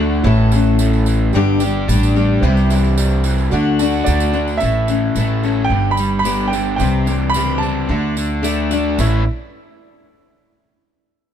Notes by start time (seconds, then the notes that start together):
Already playing: D2 D3 A3 D4 F#4 A4 D5 F#5
0.00 A3
0.23 A1 A2 E3 A3 C#4 E4 A4 C#5 E5
0.52 E3 C#4 A4, tambourine
0.56 A3
0.79 A3, tambourine
0.93 tambourine
1.06 E3, tambourine
1.32 G1 G2 D3 G3 B3 D4 G4 B4 D5 G5, tambourine
1.37 G4
1.60 B3 D4 G4, tambourine
1.64 G3
1.88 A1 G3 B3 D4 G4, tambourine
2.03 tambourine
2.15 G3 B3 D4 G4, tambourine
2.41 C2 C3 E3 G3 E4 G4 C5 E5 G5, tambourine
2.57 tambourine
2.70 E3 G3 E4 G4, tambourine
2.84 tambourine
2.97 G3, tambourine
3.11 tambourine
3.24 E3, tambourine
3.38 tambourine
3.50 D2 D3 A3 D4 F#4 A4 D5 F#5, tambourine
3.79 A3 D4 F#4 A5, tambourine
3.92 tambourine
4.04 D2 D3 A3 D5 F#5, tambourine
4.08 D4 F#4
4.20 tambourine
4.33 D3 A3 D4 F#4, tambourine
4.48 tambourine
4.58 A2 E3 A3 E5, tambourine
4.62 A1 C#4 A4
4.87 E3 A3 C#4 A4, tambourine
5.15 A1 A2 E3 A3 C#4 A4, tambourine
5.43 A3 C#4 A4, tambourine
5.64 G5
5.69 G1 G2 G3 B3 D4 G4
5.91 B5
5.97 G3, tambourine
6.19 G2 B5
6.24 D3 G3 B3 D4 G4, tambourine
6.48 D4 G4 G5
6.52 G3 B3, tambourine
6.76 C2 C3 E3 G3 G5, tambourine
6.80 C4 G4
7.06 E3 G3 C4 G4, tambourine
7.30 B5
7.34 C#2 C3 E3 G3 C4 G4, tambourine
7.58 G4 A5
7.63 G3 C4, tambourine
7.89 D2 D3 A3 D4 F#4
8.17 D3, tambourine
8.43 D3 A3 D4 F#4, tambourine
8.71 A3 D4 F#4, tambourine
8.98 A1 A2 E3 A3 C#4 E4, tambourine